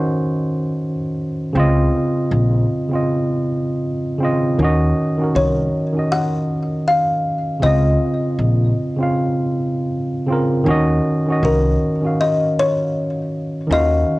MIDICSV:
0, 0, Header, 1, 4, 480
1, 0, Start_track
1, 0, Tempo, 759494
1, 980, Time_signature, 4, 2, 24, 8
1, 8969, End_track
2, 0, Start_track
2, 0, Title_t, "Kalimba"
2, 0, Program_c, 0, 108
2, 3388, Note_on_c, 0, 73, 79
2, 3867, Note_on_c, 0, 78, 104
2, 3878, Note_off_c, 0, 73, 0
2, 4345, Note_on_c, 0, 77, 82
2, 4357, Note_off_c, 0, 78, 0
2, 4822, Note_on_c, 0, 75, 94
2, 4837, Note_off_c, 0, 77, 0
2, 6475, Note_off_c, 0, 75, 0
2, 7234, Note_on_c, 0, 70, 80
2, 7714, Note_on_c, 0, 75, 96
2, 7721, Note_off_c, 0, 70, 0
2, 7954, Note_off_c, 0, 75, 0
2, 7959, Note_on_c, 0, 73, 98
2, 8673, Note_on_c, 0, 75, 99
2, 8691, Note_off_c, 0, 73, 0
2, 8969, Note_off_c, 0, 75, 0
2, 8969, End_track
3, 0, Start_track
3, 0, Title_t, "Tine electric piano"
3, 0, Program_c, 1, 4
3, 0, Control_c, 1, 64, 127
3, 0, Note_on_c, 1, 51, 72
3, 0, Note_on_c, 1, 61, 66
3, 0, Note_on_c, 1, 66, 64
3, 0, Note_on_c, 1, 72, 73
3, 0, Note_on_c, 1, 75, 109
3, 588, Note_off_c, 1, 51, 0
3, 595, Note_off_c, 1, 61, 0
3, 601, Note_off_c, 1, 66, 0
3, 608, Note_off_c, 1, 72, 0
3, 967, Note_on_c, 1, 49, 102
3, 980, Note_on_c, 1, 60, 99
3, 986, Control_c, 1, 64, 0
3, 990, Note_off_c, 1, 75, 0
3, 994, Note_on_c, 1, 65, 106
3, 1009, Note_on_c, 1, 75, 120
3, 1081, Control_c, 1, 64, 127
3, 1594, Note_off_c, 1, 49, 0
3, 1600, Note_off_c, 1, 60, 0
3, 1607, Note_off_c, 1, 65, 0
3, 1615, Note_off_c, 1, 75, 0
3, 1828, Note_on_c, 1, 49, 73
3, 1842, Note_on_c, 1, 60, 63
3, 1855, Note_on_c, 1, 65, 67
3, 1868, Note_on_c, 1, 75, 77
3, 2406, Note_off_c, 1, 49, 0
3, 2413, Note_off_c, 1, 60, 0
3, 2420, Note_off_c, 1, 65, 0
3, 2427, Note_off_c, 1, 75, 0
3, 2643, Note_on_c, 1, 49, 86
3, 2656, Note_on_c, 1, 60, 78
3, 2672, Note_on_c, 1, 65, 82
3, 2684, Note_on_c, 1, 75, 94
3, 2836, Note_off_c, 1, 49, 0
3, 2843, Note_off_c, 1, 60, 0
3, 2851, Note_off_c, 1, 65, 0
3, 2857, Note_off_c, 1, 75, 0
3, 2896, Note_on_c, 1, 51, 104
3, 2906, Control_c, 1, 64, 0
3, 2910, Note_on_c, 1, 61, 101
3, 2924, Note_on_c, 1, 66, 97
3, 2936, Note_on_c, 1, 75, 116
3, 3003, Control_c, 1, 64, 127
3, 3156, Note_off_c, 1, 51, 0
3, 3163, Note_off_c, 1, 61, 0
3, 3170, Note_off_c, 1, 66, 0
3, 3176, Note_off_c, 1, 75, 0
3, 3270, Note_on_c, 1, 51, 69
3, 3282, Note_on_c, 1, 61, 67
3, 3295, Note_on_c, 1, 66, 66
3, 3309, Note_on_c, 1, 70, 68
3, 3596, Note_off_c, 1, 51, 0
3, 3602, Note_off_c, 1, 61, 0
3, 3609, Note_off_c, 1, 66, 0
3, 3616, Note_off_c, 1, 70, 0
3, 3743, Note_on_c, 1, 51, 67
3, 3757, Note_on_c, 1, 61, 56
3, 3771, Note_on_c, 1, 66, 55
3, 3785, Note_on_c, 1, 75, 74
3, 4426, Note_off_c, 1, 51, 0
3, 4433, Note_off_c, 1, 61, 0
3, 4440, Note_off_c, 1, 66, 0
3, 4447, Note_off_c, 1, 75, 0
3, 4801, Note_on_c, 1, 49, 88
3, 4816, Note_on_c, 1, 60, 87
3, 4827, Control_c, 1, 64, 0
3, 4828, Note_on_c, 1, 65, 78
3, 4841, Note_on_c, 1, 75, 99
3, 4926, Control_c, 1, 64, 127
3, 5431, Note_off_c, 1, 49, 0
3, 5438, Note_off_c, 1, 60, 0
3, 5444, Note_off_c, 1, 65, 0
3, 5451, Note_off_c, 1, 75, 0
3, 5664, Note_on_c, 1, 49, 75
3, 5677, Note_on_c, 1, 60, 65
3, 5691, Note_on_c, 1, 65, 66
3, 5705, Note_on_c, 1, 77, 84
3, 6245, Note_off_c, 1, 49, 0
3, 6251, Note_off_c, 1, 60, 0
3, 6258, Note_off_c, 1, 65, 0
3, 6265, Note_off_c, 1, 77, 0
3, 6485, Note_on_c, 1, 49, 89
3, 6498, Note_on_c, 1, 60, 78
3, 6512, Note_on_c, 1, 65, 75
3, 6525, Note_on_c, 1, 70, 91
3, 6678, Note_off_c, 1, 49, 0
3, 6684, Note_off_c, 1, 60, 0
3, 6691, Note_off_c, 1, 65, 0
3, 6697, Note_off_c, 1, 70, 0
3, 6726, Note_on_c, 1, 51, 119
3, 6740, Note_on_c, 1, 61, 111
3, 6746, Control_c, 1, 64, 0
3, 6754, Note_on_c, 1, 66, 101
3, 6767, Note_on_c, 1, 75, 127
3, 6838, Control_c, 1, 64, 127
3, 6991, Note_off_c, 1, 51, 0
3, 6998, Note_off_c, 1, 61, 0
3, 7005, Note_off_c, 1, 66, 0
3, 7011, Note_off_c, 1, 75, 0
3, 7116, Note_on_c, 1, 51, 69
3, 7130, Note_on_c, 1, 61, 65
3, 7142, Note_on_c, 1, 66, 71
3, 7155, Note_on_c, 1, 75, 84
3, 7439, Note_off_c, 1, 51, 0
3, 7446, Note_off_c, 1, 61, 0
3, 7452, Note_off_c, 1, 66, 0
3, 7459, Note_off_c, 1, 75, 0
3, 7587, Note_on_c, 1, 51, 58
3, 7600, Note_on_c, 1, 61, 54
3, 7614, Note_on_c, 1, 66, 58
3, 7626, Note_on_c, 1, 77, 69
3, 8268, Note_off_c, 1, 51, 0
3, 8274, Note_off_c, 1, 61, 0
3, 8281, Note_off_c, 1, 66, 0
3, 8287, Note_off_c, 1, 77, 0
3, 8641, Note_on_c, 1, 51, 86
3, 8655, Note_on_c, 1, 61, 85
3, 8668, Control_c, 1, 64, 0
3, 8668, Note_on_c, 1, 65, 66
3, 8682, Note_on_c, 1, 77, 105
3, 8709, Note_on_c, 1, 66, 80
3, 8714, Note_off_c, 1, 65, 0
3, 8797, Control_c, 1, 64, 127
3, 8969, Note_off_c, 1, 51, 0
3, 8969, Note_off_c, 1, 61, 0
3, 8969, Note_off_c, 1, 66, 0
3, 8969, Note_off_c, 1, 77, 0
3, 8969, End_track
4, 0, Start_track
4, 0, Title_t, "Upright bass"
4, 0, Program_c, 2, 32
4, 982, Note_on_c, 2, 37, 88
4, 1186, Note_off_c, 2, 37, 0
4, 1461, Note_on_c, 2, 34, 93
4, 1665, Note_off_c, 2, 34, 0
4, 2901, Note_on_c, 2, 39, 93
4, 3105, Note_off_c, 2, 39, 0
4, 3381, Note_on_c, 2, 36, 86
4, 3585, Note_off_c, 2, 36, 0
4, 4816, Note_on_c, 2, 37, 93
4, 5022, Note_off_c, 2, 37, 0
4, 5300, Note_on_c, 2, 34, 94
4, 5504, Note_off_c, 2, 34, 0
4, 6739, Note_on_c, 2, 39, 90
4, 6944, Note_off_c, 2, 39, 0
4, 7221, Note_on_c, 2, 36, 91
4, 7425, Note_off_c, 2, 36, 0
4, 8661, Note_on_c, 2, 39, 101
4, 8865, Note_off_c, 2, 39, 0
4, 8969, End_track
0, 0, End_of_file